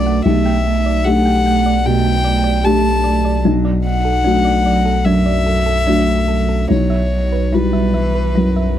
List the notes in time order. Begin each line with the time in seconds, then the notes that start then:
Already playing: B1 F#2 A3 D4 F#4 D5
0.06 F#5
0.25 B1 A3 G4 E5
0.46 G5
0.65 A3
0.86 D5
1.05 A3 D4 G4 F#5
1.25 G5
1.45 A3 G5
1.66 D5
1.85 B2 A3 G4 G5
2.05 G5
2.24 A3 D5
2.44 D5
2.64 A3 D4 G4 A5
3.04 A3 D5
3.25 D5
3.44 B1 F#3 D4
3.65 D5
3.84 F#3 F#5
4.05 A4
4.24 F#3 A3 D4 F#4
4.45 D5
4.64 F#3 D5
4.86 A4
5.05 F#2 F#3 D4 E5
5.26 D5
5.46 F#3 A4
5.66 A4
5.87 F#3 A3 D4 F#4
6.28 F#3 A4
6.49 A4
6.69 B1 F#3 E4 C#5
6.90 E5
7.12 F#3
7.32 B4
7.52 G3 E4 F#4 B4
7.73 E5
7.94 E3 E5
8.15 B4
8.35 F#2 F#3 E4
8.56 E5